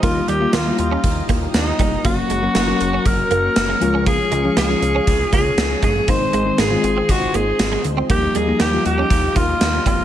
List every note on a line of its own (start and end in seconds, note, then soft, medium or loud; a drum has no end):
0.00 0.21 D#2 loud
0.00 0.39 G3 medium
0.00 0.39 A#3 medium
0.00 0.13 A#3 medium
0.00 0.39 D#4 medium
0.00 0.30 F4 medium
0.00 0.39 F4 medium
0.00 2.03 G4 medium
0.00 2.01 D#5 medium
0.00 2.03 F5 medium
0.00 2.03 A#5 medium
0.00 kick loud
0.00 closed hi-hat medium
0.28 0.47 D#2 medium
0.28 0.38 G3 medium
0.28 0.55 G4 medium
0.28 closed hi-hat medium
0.40 0.64 G3 medium
0.40 0.64 A#3 medium
0.40 0.65 D#4 medium
0.40 0.65 F4 medium
0.40 muted clean electric guitar stroke soft
0.53 0.72 D#2 loud
0.53 0.63 A#3 medium
0.53 0.78 F4 medium
0.53 snare medium
0.53 closed hi-hat medium
0.65 1.61 G3 medium
0.65 1.61 A#3 medium
0.65 1.62 D#4 medium
0.65 0.72 E4 medium
0.72 1.65 F4 medium
0.79 0.97 D#2 loud
0.79 1.24 F4 medium
0.79 muted clean electric guitar stroke soft
0.79 closed hi-hat medium
0.91 1.01 C#4 medium
1.04 1.22 D#2 medium
1.04 kick medium
1.04 closed hi-hat medium
1.29 1.47 D#2 loud
1.29 1.39 A#3 medium
1.29 kick medium
1.29 closed hi-hat medium
1.54 1.72 D#2 loud
1.54 2.02 D#4 medium
1.54 snare loud
1.54 closed hi-hat medium
1.79 1.97 F1 medium
1.79 1.89 G3 medium
1.79 kick medium
1.79 closed hi-hat medium
2.04 2.23 F#1 loud
2.04 2.40 F#3 medium
2.04 2.40 A#3 medium
2.04 2.14 A#3 medium
2.04 2.41 C#4 medium
2.04 3.08 F#4 medium
2.04 2.41 F#4 medium
2.04 3.80 A#4 medium
2.04 6.04 C#5 medium
2.04 3.80 F#5 medium
2.04 6.04 C#6 medium
2.04 kick loud
2.04 closed hi-hat medium
2.30 2.48 F#1 medium
2.30 2.40 G#3 medium
2.30 closed hi-hat medium
2.42 2.66 F#3 medium
2.42 2.66 A#3 medium
2.42 2.66 C#4 medium
2.42 2.67 F#4 medium
2.42 muted clean electric guitar stroke soft
2.55 2.73 F#1 loud
2.55 2.65 A#3 medium
2.55 snare medium
2.55 closed hi-hat medium
2.67 3.63 F#3 medium
2.67 3.63 A#3 medium
2.67 3.63 C#4 medium
2.67 3.64 F#4 medium
2.81 2.99 F#1 loud
2.81 muted clean electric guitar stroke soft
2.81 closed hi-hat medium
2.93 3.03 C#4 medium
3.06 3.24 F#1 loud
3.06 4.07 A#4 loud
3.06 kick medium
3.06 closed hi-hat medium
3.31 3.49 F#1 loud
3.31 3.40 A#3 medium
3.31 closed hi-hat medium
3.56 3.74 F#1 medium
3.56 snare loud
3.56 closed hi-hat medium
3.69 3.78 G#3 medium
3.80 4.18 C#2 loud
3.80 4.41 F3 medium
3.80 4.41 G#3 medium
3.80 4.41 C#4 medium
3.80 4.41 F4 medium
3.80 8.06 G#4 medium
3.80 6.06 F5 medium
3.80 muted clean electric guitar stroke soft
3.80 closed hi-hat medium
3.94 4.04 C#4 medium
4.06 4.16 A#3 medium
4.06 4.54 G#4 loud
4.06 kick loud
4.06 closed hi-hat medium
4.32 4.50 C#2 loud
4.32 4.41 G#3 medium
4.32 closed hi-hat medium
4.44 4.67 F3 medium
4.44 4.68 G#3 medium
4.44 4.68 C#4 medium
4.44 4.69 F4 medium
4.44 muted clean electric guitar stroke soft
4.57 4.75 C#2 loud
4.57 4.67 A#3 medium
4.57 5.29 G#4 medium
4.57 snare loud
4.57 closed hi-hat medium
4.68 5.65 F3 medium
4.68 5.65 G#3 medium
4.68 5.65 C#4 medium
4.68 5.65 F4 medium
4.82 5.00 C#2 loud
4.82 muted clean electric guitar stroke soft
4.82 closed hi-hat medium
4.95 5.04 C#4 medium
5.07 5.25 C#2 loud
5.07 kick medium
5.07 closed hi-hat medium
5.33 5.51 C#2 loud
5.33 5.42 A#3 medium
5.33 5.80 G#4 loud
5.33 kick medium
5.33 closed hi-hat medium
5.57 5.76 C#2 medium
5.57 snare loud
5.57 closed hi-hat medium
5.83 6.01 G1 medium
5.83 5.93 G#3 medium
5.83 6.11 G#4 medium
5.83 kick medium
5.83 closed hi-hat medium
6.07 6.26 G#1 medium
6.07 6.44 D#3 medium
6.07 6.44 G#3 medium
6.07 6.18 A#3 medium
6.07 6.44 C4 medium
6.07 6.44 D#4 medium
6.07 8.08 C5 medium
6.07 6.59 C5 loud
6.07 10.04 D#5 medium
6.07 8.08 C6 medium
6.07 kick loud
6.07 closed hi-hat medium
6.33 6.51 G#1 loud
6.33 6.43 G#3 medium
6.33 closed hi-hat medium
6.45 6.69 D#3 medium
6.45 6.70 G#3 medium
6.45 6.70 C4 medium
6.45 6.70 D#4 medium
6.45 muted clean electric guitar stroke soft
6.58 6.76 G#1 loud
6.58 6.68 A#3 medium
6.58 7.12 G#4 medium
6.58 snare loud
6.58 closed hi-hat medium
6.70 7.66 D#3 medium
6.70 7.66 G#3 medium
6.70 7.67 C4 medium
6.70 7.67 F4 medium
6.84 7.02 G#1 medium
6.84 muted clean electric guitar stroke soft
6.84 closed hi-hat medium
6.97 7.06 C4 medium
7.09 7.27 G#1 loud
7.09 7.37 F#4 medium
7.09 kick medium
7.09 closed hi-hat medium
7.34 7.52 G#1 medium
7.34 7.44 A#3 medium
7.34 7.85 G#4 medium
7.34 closed hi-hat medium
7.59 7.78 G#1 loud
7.59 snare loud
7.59 closed hi-hat loud
7.72 7.81 G#3 medium
7.84 8.03 D2 medium
7.84 muted clean electric guitar stroke soft
7.84 closed hi-hat medium
7.97 8.07 C4 medium
8.09 8.28 D#2 loud
8.09 8.45 F3 medium
8.09 8.46 G3 medium
8.09 8.19 A#3 medium
8.09 8.46 A#3 medium
8.09 8.46 D#4 medium
8.09 10.04 G4 medium
8.09 8.38 G4 loud
8.09 10.04 F5 medium
8.09 10.04 A#5 medium
8.09 kick loud
8.09 closed hi-hat medium
8.35 8.53 D#2 medium
8.35 8.45 G3 medium
8.35 8.60 G#4 medium
8.35 closed hi-hat medium
8.47 8.71 F3 medium
8.47 8.71 G3 medium
8.47 8.72 A#3 medium
8.47 8.72 D#4 medium
8.47 muted clean electric guitar stroke soft
8.60 8.78 D#2 loud
8.60 8.70 A#3 medium
8.60 8.84 G4 loud
8.60 snare loud
8.60 closed hi-hat medium
8.72 9.68 F3 medium
8.72 9.68 G3 medium
8.72 9.68 A#3 medium
8.72 9.68 F4 medium
8.86 9.04 D#2 loud
8.86 9.38 G4 loud
8.86 muted clean electric guitar stroke soft
8.86 closed hi-hat medium
8.98 9.08 C#4 medium
9.10 9.29 D#2 loud
9.10 kick medium
9.10 closed hi-hat medium
9.36 9.54 D#2 loud
9.36 9.46 A#3 medium
9.36 9.86 F4 loud
9.36 kick medium
9.36 closed hi-hat medium
9.61 9.79 D#2 loud
9.61 snare loud
9.61 closed hi-hat medium
9.86 10.04 F1 medium
9.86 9.96 G3 medium
9.86 10.04 F4 loud
9.86 kick medium
9.86 closed hi-hat medium